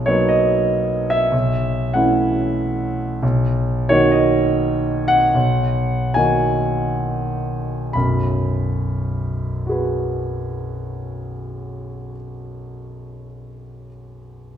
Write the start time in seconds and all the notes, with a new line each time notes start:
Already playing: B1
0.06 F#3 A#3 B3 D#4 C#5
0.29 D#5
1.10 E5
1.32 B1
1.94 E3 A3 C#4 E4 F#5
3.23 B1
3.89 D#3 A#3 D#4 F#4 C#5
4.11 D#5
5.08 F#5
5.35 B1
6.14 D#3 A#3 D#4 F#4 G#5
7.93 B1 F#2 B5
9.67 F#4 G#4
9.71 B4